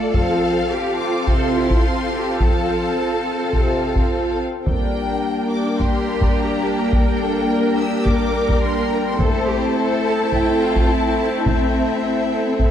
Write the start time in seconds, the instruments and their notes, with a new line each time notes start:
Already playing: viola section A3 F4, analog synth pad A3 F4 A4 D5, violin section A4 D5 F5, cello section A4
0.14 french horn section F3, analog synth pad C4 F4 A4 C5, viola section C4 F4, violin section A4 F5, taiko
0.71 cello section G4
0.99 cello section F4, violin section D6
1.27 french horn section C3, cello section A4, violin section C6, taiko
1.55 cello section E4
1.70 taiko
1.84 cello section F4
2.13 cello section G4
2.40 french horn section F3, cello section A4, violin section A5, taiko
3.54 french horn section C3, taiko
3.96 taiko
4.65 french horn section G3, analog synth pad A#3 D4 A#4 D5, viola section A#3 D4, violin section A#4 G5, taiko
5.51 violin section D6
5.79 cello section G4, violin section C6, taiko
6.22 taiko
6.36 violin section A#5
6.65 violin section A5
6.79 violin section A#5
6.92 cello section A#4, violin section G5, taiko
7.21 cello section A4
7.49 cello section A#4
7.78 cello section G4, violin section E6
8.06 cello section A#4, violin section D6, taiko
8.49 taiko
8.62 violin section C6
8.91 violin section A#5
9.07 violin section C6
9.18 french horn section A3, analog synth pad C4 E4 A4 C5, viola section C4 E4, violin section A4 C5 A5, cello section A4, taiko
9.48 cello section G4
9.76 cello section A4
10.06 violin section A5
10.33 cello section E4, violin section G5, taiko
10.62 cello section F4
10.76 taiko
10.90 cello section E4, violin section A5
11.46 cello section C4, violin section E5, taiko
12.03 violin section A4
12.59 taiko